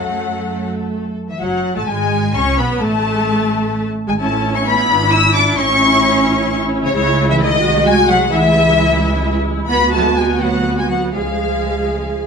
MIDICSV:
0, 0, Header, 1, 6, 480
1, 0, Start_track
1, 0, Key_signature, 3, "minor"
1, 0, Tempo, 489396
1, 1383, Time_signature, 6, 3, 24, 8
1, 1383, Tempo, 469851
1, 2823, Tempo, 459418
1, 10503, Tempo, 493827
1, 12542, End_track
2, 0, Start_track
2, 0, Title_t, "Violin section"
2, 0, Program_c, 0, 48
2, 0, Note_on_c, 0, 69, 48
2, 1158, Note_off_c, 0, 69, 0
2, 1272, Note_on_c, 0, 76, 50
2, 1378, Note_off_c, 0, 76, 0
2, 1383, Note_on_c, 0, 78, 66
2, 1744, Note_off_c, 0, 78, 0
2, 1754, Note_on_c, 0, 81, 80
2, 1862, Note_on_c, 0, 80, 79
2, 1868, Note_off_c, 0, 81, 0
2, 2337, Note_off_c, 0, 80, 0
2, 2345, Note_on_c, 0, 85, 91
2, 2581, Note_on_c, 0, 83, 70
2, 2585, Note_off_c, 0, 85, 0
2, 2663, Note_off_c, 0, 83, 0
2, 2826, Note_on_c, 0, 81, 88
2, 3887, Note_off_c, 0, 81, 0
2, 4155, Note_on_c, 0, 80, 77
2, 4201, Note_off_c, 0, 80, 0
2, 4263, Note_on_c, 0, 81, 76
2, 4620, Note_off_c, 0, 81, 0
2, 4639, Note_on_c, 0, 85, 91
2, 4685, Note_off_c, 0, 85, 0
2, 4746, Note_on_c, 0, 83, 108
2, 5219, Note_off_c, 0, 83, 0
2, 5228, Note_on_c, 0, 88, 116
2, 5467, Note_on_c, 0, 86, 104
2, 5469, Note_off_c, 0, 88, 0
2, 5702, Note_off_c, 0, 86, 0
2, 5712, Note_on_c, 0, 85, 116
2, 6766, Note_off_c, 0, 85, 0
2, 7039, Note_on_c, 0, 73, 103
2, 7128, Note_off_c, 0, 73, 0
2, 7140, Note_on_c, 0, 73, 106
2, 7495, Note_off_c, 0, 73, 0
2, 7514, Note_on_c, 0, 76, 103
2, 7559, Note_off_c, 0, 76, 0
2, 7625, Note_on_c, 0, 75, 116
2, 8088, Note_off_c, 0, 75, 0
2, 8098, Note_on_c, 0, 80, 109
2, 8333, Note_off_c, 0, 80, 0
2, 8337, Note_on_c, 0, 78, 98
2, 8420, Note_off_c, 0, 78, 0
2, 8564, Note_on_c, 0, 76, 110
2, 9624, Note_off_c, 0, 76, 0
2, 10008, Note_on_c, 0, 83, 96
2, 10238, Note_off_c, 0, 83, 0
2, 10259, Note_on_c, 0, 81, 100
2, 10500, Note_off_c, 0, 81, 0
2, 10507, Note_on_c, 0, 80, 86
2, 10737, Note_off_c, 0, 80, 0
2, 10741, Note_on_c, 0, 78, 88
2, 11093, Note_off_c, 0, 78, 0
2, 11105, Note_on_c, 0, 80, 71
2, 11209, Note_on_c, 0, 78, 72
2, 11218, Note_off_c, 0, 80, 0
2, 11449, Note_off_c, 0, 78, 0
2, 11456, Note_on_c, 0, 77, 73
2, 12542, Note_off_c, 0, 77, 0
2, 12542, End_track
3, 0, Start_track
3, 0, Title_t, "Violin section"
3, 0, Program_c, 1, 48
3, 0, Note_on_c, 1, 78, 58
3, 663, Note_off_c, 1, 78, 0
3, 1265, Note_on_c, 1, 76, 50
3, 1374, Note_off_c, 1, 76, 0
3, 1380, Note_on_c, 1, 78, 57
3, 1740, Note_on_c, 1, 81, 66
3, 1743, Note_off_c, 1, 78, 0
3, 1856, Note_on_c, 1, 80, 66
3, 1860, Note_off_c, 1, 81, 0
3, 2338, Note_on_c, 1, 85, 72
3, 2343, Note_off_c, 1, 80, 0
3, 2577, Note_off_c, 1, 85, 0
3, 2581, Note_on_c, 1, 83, 72
3, 2816, Note_off_c, 1, 83, 0
3, 2820, Note_on_c, 1, 81, 78
3, 3906, Note_off_c, 1, 81, 0
3, 4141, Note_on_c, 1, 80, 64
3, 4190, Note_off_c, 1, 80, 0
3, 4258, Note_on_c, 1, 81, 69
3, 4617, Note_off_c, 1, 81, 0
3, 4637, Note_on_c, 1, 85, 73
3, 4751, Note_on_c, 1, 83, 83
3, 4753, Note_off_c, 1, 85, 0
3, 5227, Note_on_c, 1, 88, 98
3, 5232, Note_off_c, 1, 83, 0
3, 5464, Note_on_c, 1, 86, 91
3, 5468, Note_off_c, 1, 88, 0
3, 5547, Note_off_c, 1, 86, 0
3, 5707, Note_on_c, 1, 85, 101
3, 6764, Note_off_c, 1, 85, 0
3, 7024, Note_on_c, 1, 73, 87
3, 7135, Note_off_c, 1, 73, 0
3, 7152, Note_on_c, 1, 73, 92
3, 7501, Note_off_c, 1, 73, 0
3, 7505, Note_on_c, 1, 76, 84
3, 7552, Note_off_c, 1, 76, 0
3, 7631, Note_on_c, 1, 75, 97
3, 8091, Note_off_c, 1, 75, 0
3, 8092, Note_on_c, 1, 80, 102
3, 8325, Note_off_c, 1, 80, 0
3, 8338, Note_on_c, 1, 78, 91
3, 8571, Note_off_c, 1, 78, 0
3, 8571, Note_on_c, 1, 76, 96
3, 9650, Note_off_c, 1, 76, 0
3, 10001, Note_on_c, 1, 83, 95
3, 10234, Note_off_c, 1, 83, 0
3, 10245, Note_on_c, 1, 81, 73
3, 10493, Note_off_c, 1, 81, 0
3, 10502, Note_on_c, 1, 80, 67
3, 10580, Note_off_c, 1, 80, 0
3, 10736, Note_on_c, 1, 78, 66
3, 11084, Note_off_c, 1, 78, 0
3, 11088, Note_on_c, 1, 80, 62
3, 11208, Note_off_c, 1, 80, 0
3, 11216, Note_on_c, 1, 78, 59
3, 11294, Note_off_c, 1, 78, 0
3, 11459, Note_on_c, 1, 77, 61
3, 12542, Note_off_c, 1, 77, 0
3, 12542, End_track
4, 0, Start_track
4, 0, Title_t, "Viola section"
4, 0, Program_c, 2, 48
4, 0, Note_on_c, 2, 57, 53
4, 1003, Note_off_c, 2, 57, 0
4, 1380, Note_on_c, 2, 54, 67
4, 1718, Note_off_c, 2, 54, 0
4, 1737, Note_on_c, 2, 57, 67
4, 1786, Note_off_c, 2, 57, 0
4, 1862, Note_on_c, 2, 56, 71
4, 2337, Note_off_c, 2, 56, 0
4, 2351, Note_on_c, 2, 61, 74
4, 2584, Note_off_c, 2, 61, 0
4, 2592, Note_on_c, 2, 59, 78
4, 2826, Note_off_c, 2, 59, 0
4, 2830, Note_on_c, 2, 57, 89
4, 3911, Note_off_c, 2, 57, 0
4, 4140, Note_on_c, 2, 56, 69
4, 4190, Note_off_c, 2, 56, 0
4, 4266, Note_on_c, 2, 61, 71
4, 4266, Note_on_c, 2, 64, 77
4, 4948, Note_off_c, 2, 61, 0
4, 4986, Note_on_c, 2, 62, 66
4, 5665, Note_off_c, 2, 62, 0
4, 5709, Note_on_c, 2, 61, 80
4, 7101, Note_off_c, 2, 61, 0
4, 7101, Note_off_c, 2, 64, 0
4, 7139, Note_on_c, 2, 64, 84
4, 7141, Note_on_c, 2, 56, 84
4, 7816, Note_off_c, 2, 64, 0
4, 7854, Note_on_c, 2, 66, 77
4, 8523, Note_off_c, 2, 66, 0
4, 8569, Note_on_c, 2, 64, 75
4, 9970, Note_off_c, 2, 56, 0
4, 9972, Note_off_c, 2, 64, 0
4, 10007, Note_on_c, 2, 59, 73
4, 10012, Note_on_c, 2, 66, 72
4, 11413, Note_off_c, 2, 59, 0
4, 11415, Note_off_c, 2, 66, 0
4, 11447, Note_on_c, 2, 68, 54
4, 11448, Note_on_c, 2, 56, 53
4, 12542, Note_off_c, 2, 56, 0
4, 12542, Note_off_c, 2, 68, 0
4, 12542, End_track
5, 0, Start_track
5, 0, Title_t, "Cello section"
5, 0, Program_c, 3, 48
5, 0, Note_on_c, 3, 54, 60
5, 650, Note_off_c, 3, 54, 0
5, 1260, Note_on_c, 3, 52, 46
5, 1308, Note_off_c, 3, 52, 0
5, 1378, Note_on_c, 3, 54, 58
5, 1735, Note_off_c, 3, 54, 0
5, 1739, Note_on_c, 3, 57, 65
5, 1862, Note_off_c, 3, 57, 0
5, 1863, Note_on_c, 3, 56, 69
5, 2342, Note_on_c, 3, 61, 76
5, 2347, Note_off_c, 3, 56, 0
5, 2580, Note_on_c, 3, 59, 77
5, 2584, Note_off_c, 3, 61, 0
5, 2816, Note_off_c, 3, 59, 0
5, 2819, Note_on_c, 3, 57, 73
5, 3883, Note_off_c, 3, 57, 0
5, 4143, Note_on_c, 3, 56, 61
5, 4192, Note_off_c, 3, 56, 0
5, 4263, Note_on_c, 3, 57, 66
5, 4620, Note_off_c, 3, 57, 0
5, 4623, Note_on_c, 3, 61, 84
5, 4672, Note_off_c, 3, 61, 0
5, 4741, Note_on_c, 3, 59, 89
5, 5217, Note_off_c, 3, 59, 0
5, 5223, Note_on_c, 3, 64, 88
5, 5466, Note_off_c, 3, 64, 0
5, 5470, Note_on_c, 3, 62, 92
5, 5707, Note_on_c, 3, 61, 86
5, 5709, Note_off_c, 3, 62, 0
5, 6785, Note_off_c, 3, 61, 0
5, 7028, Note_on_c, 3, 49, 79
5, 7133, Note_off_c, 3, 49, 0
5, 7146, Note_on_c, 3, 49, 85
5, 7497, Note_off_c, 3, 49, 0
5, 7504, Note_on_c, 3, 52, 91
5, 7621, Note_on_c, 3, 51, 90
5, 7623, Note_off_c, 3, 52, 0
5, 8095, Note_on_c, 3, 56, 91
5, 8096, Note_off_c, 3, 51, 0
5, 8179, Note_off_c, 3, 56, 0
5, 8329, Note_on_c, 3, 54, 99
5, 8562, Note_off_c, 3, 54, 0
5, 8562, Note_on_c, 3, 52, 89
5, 9624, Note_off_c, 3, 52, 0
5, 10012, Note_on_c, 3, 59, 98
5, 10240, Note_off_c, 3, 59, 0
5, 10256, Note_on_c, 3, 57, 77
5, 10498, Note_off_c, 3, 57, 0
5, 10503, Note_on_c, 3, 56, 79
5, 10581, Note_off_c, 3, 56, 0
5, 10736, Note_on_c, 3, 54, 74
5, 11084, Note_off_c, 3, 54, 0
5, 11086, Note_on_c, 3, 56, 64
5, 11204, Note_on_c, 3, 54, 62
5, 11206, Note_off_c, 3, 56, 0
5, 11451, Note_off_c, 3, 54, 0
5, 11452, Note_on_c, 3, 53, 63
5, 12542, Note_off_c, 3, 53, 0
5, 12542, End_track
6, 0, Start_track
6, 0, Title_t, "Double bass section"
6, 0, Program_c, 4, 48
6, 0, Note_on_c, 4, 42, 46
6, 1181, Note_off_c, 4, 42, 0
6, 1379, Note_on_c, 4, 30, 53
6, 1717, Note_off_c, 4, 30, 0
6, 1742, Note_on_c, 4, 33, 64
6, 1791, Note_off_c, 4, 33, 0
6, 1862, Note_on_c, 4, 32, 73
6, 2336, Note_off_c, 4, 32, 0
6, 2346, Note_on_c, 4, 37, 83
6, 2584, Note_on_c, 4, 35, 78
6, 2586, Note_off_c, 4, 37, 0
6, 2822, Note_off_c, 4, 35, 0
6, 2825, Note_on_c, 4, 33, 72
6, 3886, Note_off_c, 4, 33, 0
6, 4146, Note_on_c, 4, 32, 73
6, 4258, Note_off_c, 4, 32, 0
6, 4267, Note_on_c, 4, 33, 70
6, 4949, Note_off_c, 4, 33, 0
6, 4986, Note_on_c, 4, 32, 78
6, 5705, Note_on_c, 4, 33, 80
6, 5707, Note_off_c, 4, 32, 0
6, 7112, Note_off_c, 4, 33, 0
6, 7143, Note_on_c, 4, 37, 75
6, 7846, Note_off_c, 4, 37, 0
6, 7860, Note_on_c, 4, 36, 78
6, 8554, Note_off_c, 4, 36, 0
6, 8570, Note_on_c, 4, 37, 74
6, 10007, Note_on_c, 4, 38, 70
6, 10014, Note_off_c, 4, 37, 0
6, 11424, Note_off_c, 4, 38, 0
6, 11455, Note_on_c, 4, 37, 58
6, 12542, Note_off_c, 4, 37, 0
6, 12542, End_track
0, 0, End_of_file